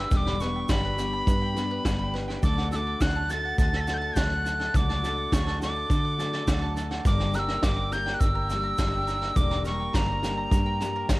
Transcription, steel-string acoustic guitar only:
0.00 0.10 G3 medium
0.00 0.11 B3 medium
0.00 0.12 D4 medium
0.00 0.11 G4 medium
0.10 0.40 G2 medium
0.10 0.40 D3 medium
0.10 0.40 G3 medium
0.10 0.41 B3 medium
0.10 0.40 D4 medium
0.10 0.38 G4 medium
0.39 0.66 G3 soft
0.39 0.68 B3 soft
0.39 0.69 D4 soft
0.39 0.69 G4 soft
0.68 0.97 G3 medium
0.68 0.97 B3 medium
0.68 0.96 D4 medium
0.68 0.95 G4 medium
0.96 1.56 G3 soft
0.96 1.55 B3 soft
0.96 1.55 D4 soft
0.96 1.53 G4 medium
1.54 1.83 G3 soft
1.54 1.85 B3 medium
1.54 1.85 D4 medium
1.54 1.84 G4 medium
1.84 2.42 G3 medium
1.84 2.43 B3 medium
1.84 2.43 D4 medium
1.84 2.44 G4 medium
2.42 2.71 D3 medium
2.42 2.72 F#3 medium
2.42 2.72 A3 medium
2.42 2.72 D4 medium
2.42 2.70 F#4 medium
2.71 3.00 A3 soft
2.71 3.01 D4 medium
2.71 3.00 F#4 medium
2.99 3.29 F#3 medium
2.99 3.30 A3 medium
2.99 3.30 D4 medium
2.99 3.28 F#4 medium
3.29 3.89 A3 soft
3.29 3.88 D4 soft
3.29 3.86 F#4 medium
3.87 4.15 A3 soft
3.87 4.16 D4 soft
3.87 4.16 F#4 soft
4.15 4.73 F#3 medium
4.15 4.74 A3 medium
4.15 4.76 D4 medium
4.15 4.75 F#4 medium
4.75 5.03 D3 medium
4.75 5.04 F#3 medium
4.75 5.04 A3 medium
4.75 5.03 D4 medium
4.75 5.02 F#4 medium
5.03 5.32 A3 soft
5.03 5.33 D4 soft
5.03 5.32 F#4 soft
5.32 5.61 F#3 medium
5.32 5.61 A3 medium
5.32 5.61 D4 medium
5.32 5.59 F#4 medium
5.60 6.20 A3 soft
5.60 6.19 D4 soft
5.60 6.17 F#4 medium
6.18 6.47 A3 soft
6.18 6.47 D4 soft
6.18 6.47 F#4 soft
6.46 7.05 F#3 medium
6.46 7.05 A3 medium
6.46 7.06 D4 medium
6.46 7.06 F#4 medium
7.04 7.34 G2 medium
7.04 7.34 D3 medium
7.04 7.34 G3 medium
7.04 7.34 A#3 medium
7.04 7.35 D4 medium
7.04 7.33 G4 medium
7.35 7.62 G3 soft
7.35 7.63 A#3 soft
7.35 7.64 D4 soft
7.35 7.63 G4 soft
7.63 7.92 G3 medium
7.63 7.92 A#3 medium
7.63 7.91 D4 medium
7.63 7.90 G4 medium
7.91 8.51 G3 soft
7.91 8.51 A#3 soft
7.91 8.50 D4 soft
7.91 8.48 G4 soft
8.50 8.77 G3 soft
8.50 8.79 A#3 soft
8.50 8.79 D4 soft
8.50 8.79 G4 soft
8.78 9.35 G3 medium
8.78 9.35 A#3 medium
8.78 9.35 D4 medium
8.78 9.36 G4 medium
9.35 9.64 G2 medium
9.35 9.65 D3 medium
9.35 9.65 G3 medium
9.35 9.65 A#3 medium
9.35 9.64 D4 medium
9.35 9.63 G4 medium
9.64 9.92 G3 soft
9.64 9.93 A#3 soft
9.64 9.94 D4 soft
9.64 9.94 G4 medium
9.93 10.22 G3 medium
9.93 10.23 A#3 medium
9.93 10.23 D4 medium
9.93 10.21 G4 medium
10.22 10.82 A#3 soft
10.22 10.81 D4 soft
10.22 10.80 G4 medium
10.26 10.82 G3 soft
10.81 11.08 G3 medium
10.81 11.10 A#3 medium
10.81 11.10 D4 medium
10.81 11.10 G4 medium
11.09 11.20 G3 medium
11.09 11.20 A#3 medium
11.09 11.20 D4 medium
11.09 11.20 G4 medium

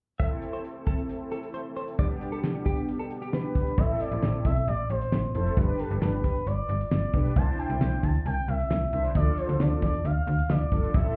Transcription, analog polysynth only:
0.20 1.95 C4 medium
0.20 1.95 E4 medium
0.20 1.95 A4 medium
1.99 3.74 B3 medium
1.99 3.74 D4 medium
1.99 3.74 G4 medium
3.78 4.52 C4 medium
3.78 4.52 E4 medium
3.78 4.52 A4 medium
5.35 5.53 C4 medium
5.35 5.53 E4 medium
5.35 5.53 A4 medium
5.57 6.31 D4 medium
5.57 6.31 G4 medium
7.14 7.32 D4 medium
7.14 7.32 G4 medium
7.14 7.32 B4 medium
7.36 8.11 D4 medium
7.36 8.11 E4 medium
7.36 8.11 C5 medium
8.93 9.12 D4 medium
8.93 9.12 E4 medium
8.93 9.12 C5 medium
9.15 9.90 D4 medium
9.15 9.90 F4 medium
9.15 9.90 A4 medium
10.72 10.91 D4 medium
10.72 10.91 F4 medium
10.72 10.91 A4 medium
10.94 11.16 C4 medium
10.94 11.16 E4 medium
10.94 11.16 A4 medium

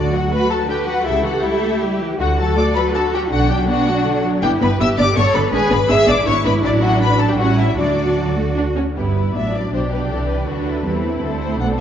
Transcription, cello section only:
0.00 0.65 F#4 medium
0.69 1.06 B4 medium
1.06 1.81 A4 medium
1.81 2.19 G4 medium
2.19 2.56 F#4 medium
2.57 2.94 A4 medium
2.95 3.31 F#4 medium
3.32 4.42 D4 medium
4.43 4.80 E4 medium
4.80 5.16 G4 medium
5.17 5.53 A4 medium
5.53 5.88 B4 medium
5.89 6.26 G#4 medium
6.26 6.99 E4 medium
7.01 7.39 D4 medium
7.39 7.78 E4 medium
7.79 8.75 F#4 medium
8.97 9.32 G2 soft
9.34 9.71 A2 soft
9.72 10.09 B2 soft
10.10 10.47 C3 soft
10.47 10.84 D3 soft
10.84 11.21 E3 soft
11.22 11.58 D3 soft
11.58 11.80 B2 soft

